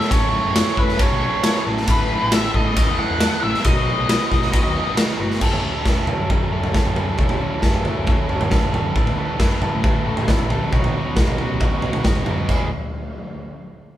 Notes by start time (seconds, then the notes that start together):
Already playing: F#3 A3 C#4 A4 E5
0.01 snare
0.10 A1 F#2 C#3 F#3 A3 C#4 A4 C#5, kick, ride bell
0.44 F#1
0.55 F#2 C#3 F#3 A3 C#4 A4 C#5, snare, ride bell
0.76 F#1 F#2 C#3 F#3 A3 C#4 A4 B4, kick
0.89 snare
0.99 F#2 C#3 F#3 A3 C#4 A4 C#5, kick, ride bell
1.10 B1
1.43 F#2 C#3 F#3 A3 C#4 A4, snare, ride bell
1.64 A1 F#2 C#3 F#3 A3 C#4 A4
1.77 snare
1.86 A1 A2 E3 A3 B3 A4, kick, ride bell
1.91 B4
2.23 A1
2.32 A2 E3 A3 B3 A4 E5, snare, ride bell
2.54 A1 A2 E3 A3 B3 A4 D#5, kick
2.75 A2 E3 A3 B3 A4, kick, ride bell
2.88 E2
2.99 F#5
3.10 E2
3.19 A2 E3 A3 B3 A4, snare, ride bell
3.42 A1 A2 E3 A3 B3 A4 E5
3.54 snare
3.64 B1 B2 F#3 B3 D#4 F#4 D#5, kick, ride bell
3.99 B1
4.09 B2 F#3 B3 D#4 F#4, snare, ride bell
4.31 B1 B2 F#3 B3 D#4 F#4, kick, snare
4.42 snare
4.52 B2 F#3 B3 D#4 F#4, kick, ride bell
4.65 D#2
4.97 B2 F#3 B3 D#4 F#4, snare, ride bell
5.19 G1 B2 F#3 B3 D#4 F#4
5.31 snare
5.40 F#1 F#2 C#3 F#3 A3 C#4 A4, kick, floor tom, crash
5.52 floor tom
5.63 F#2 C#3 F#3 A3 C#4 A4
5.84 E1 F#2 C#3 F#3 A3 C#4 A4, kick, snare
6.07 F#2 C#3 F#3 A3 C#4 A4, floor tom, mid tom
6.19 F#2
6.30 F#2 C#3 F#3 A3 C#4 A4, kick, floor tom
6.52 F#2 C#3 F#3 A3 C#4 A4
6.63 floor tom
6.73 F#2 C#3 F#3 A3 C#4 A4, kick, snare, floor tom, mid tom
6.85 F#2, floor tom
6.95 F#2 C#3 F#3 A3 C#4 A4, floor tom, mid tom
7.18 E1 F#2 C#3 F#3 A3 C#4 A4, kick, floor tom
7.29 floor tom
7.40 F#2 C#3 F#3 A3 C#4 A4
7.61 F#1 F#2 C#3 F#3 A3 C#4 A4, kick, snare
7.74 floor tom
7.84 F#2 C#3 F#3 A3 C#4 A4, floor tom
7.98 F#1
8.06 F#2 C#3 F#3 A3 C#4 A4, kick, floor tom
8.28 F#1 F#2 C#3 F#3 A3 C#4 A4, floor tom
8.41 floor tom, mid tom
8.50 F#2 C#3 F#3 A3 C#4 A4, kick, snare, floor tom, mid tom
8.63 F#1, floor tom
8.72 F#2 C#3 F#3 A3 C#4 A4, floor tom, mid tom
8.94 A1 A2 E3 A3 B3 A4, kick, floor tom
9.07 floor tom
9.17 A2 E3 A3 B3 A4
9.38 F#1 A2 E3 A3 B3 A4, kick, snare
9.61 A2 E3 A3 B3 A4, floor tom, mid tom
9.74 A2
9.83 A2 E3 A3 B3 A4, kick, floor tom
10.05 A2 E3 A3 B3 A4
10.17 floor tom
10.28 A2 E3 A3 B3 A4, kick, snare, floor tom, mid tom
10.39 A#1, floor tom
10.50 A2 E3 A3 B3 A4, floor tom, mid tom
10.72 B1 B2 F#3 B3 D#4 F#4, kick, floor tom
10.84 floor tom
10.96 B2 F#3 B3 D#4 F#4
11.16 B1 B2 F#3 B3 D#4 F#4, kick, snare
11.27 floor tom
11.38 B2 F#3 B3 D#4 F#4, floor tom
11.49 B1
11.60 B2 F#3 B3 D#4 F#4, kick, floor tom
11.82 B1 B2 F#3 B3 D#4 F#4, floor tom
11.93 floor tom, mid tom
12.04 G#2 B2 F#3 B3 D#4 F#4, kick, snare, floor tom, mid tom
12.15 floor tom
12.26 F#2 B2 F#3 B3 D#4 F#4, floor tom, mid tom
12.48 E1 E2 B2 E3 G#3 B3 G#4, kick, floor tom, crash